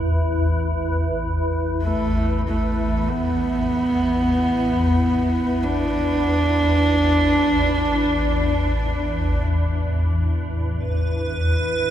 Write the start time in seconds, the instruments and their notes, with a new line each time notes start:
Already playing: synth drone A1 E2
1.83 horsehead fiddle A3
2.48 horsehead fiddle A3
3.09 horsehead fiddle B3
5.63 horsehead fiddle D4
10.73 synth drone A1 E2, ambient pad B4